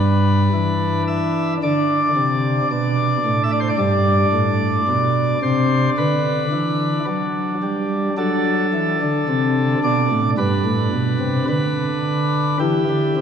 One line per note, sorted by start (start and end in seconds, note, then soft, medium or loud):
0.00 0.49 G2 medium
0.00 1.57 D4 soft
0.00 1.02 B4 medium
0.53 1.58 E3 medium
1.08 1.53 E5 loud
1.63 2.08 D3 medium
1.63 3.76 D4 soft
1.63 2.68 D5 medium
2.16 2.62 C3 medium
2.71 3.17 B2 medium
2.71 3.42 D5 medium
3.25 3.71 A2 medium
3.44 3.51 E5 medium
3.52 3.59 D5 medium
3.60 3.68 C5 medium
3.69 3.77 D5 medium
3.78 4.25 G2 medium
3.78 8.14 D4 soft
3.78 5.39 D5 medium
4.33 4.80 A2 medium
4.88 5.34 B2 medium
5.42 5.89 C3 medium
5.42 5.89 C5 medium
5.98 6.45 D3 medium
5.98 7.05 B4 loud
6.53 7.00 E3 medium
7.07 7.54 F#3 medium
7.63 8.09 G3 medium
8.17 8.65 F#3 medium
8.17 10.33 D4 soft
8.17 9.79 A4 medium
8.74 8.97 E3 medium
9.01 9.24 D3 medium
9.29 9.75 C3 medium
9.84 10.07 B2 medium
9.84 10.30 D5 loud
10.11 10.34 A2 medium
10.38 10.61 G2 medium
10.38 12.57 D4 soft
10.38 11.45 B4 loud
10.65 10.89 A2 medium
10.92 11.16 B2 medium
11.20 11.44 C3 medium
11.48 12.57 D3 medium
11.48 12.57 B4 loud
12.60 12.84 E3 medium
12.60 13.21 E4 soft
12.60 13.21 G4 medium
12.89 13.13 D3 medium
13.17 13.21 C3 medium